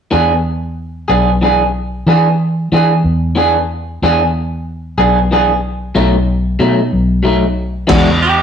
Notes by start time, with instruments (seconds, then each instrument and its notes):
0.11 fingered electric bass E2, clean electric guitar E3 B3 D4 G#4
1.08 fingered electric bass B1, clean electric guitar B3 D4 G#4
1.42 clean electric guitar E3 B3 D4 G#4
2.07 fingered electric bass E3, clean electric guitar E3 B3 D4 G#4
2.72 fingered electric bass E3, clean electric guitar E3 B3 D4 G#4
3.04 fingered electric bass E2
3.35 clean electric guitar E3 B3 D4 G#4
4.02 fingered electric bass E2, clean electric guitar E3 B3 D4 G#4
4.98 fingered electric bass B1, clean electric guitar B3 D4 G#4
5.31 clean electric guitar E3 B3 D4 G#4
5.95 fingered electric bass B1, clean electric guitar B2 F#3 A3 D#4
6.59 clean electric guitar B2 F#3 A3 D#4, fingered electric bass B2
6.93 fingered electric bass B1
7.23 clean electric guitar B2 F#3 A3 D#4
7.87 fingered electric bass E2, clean electric guitar E3 G#3 D4 F#4, kick, crash
8.22 clean electric guitar G4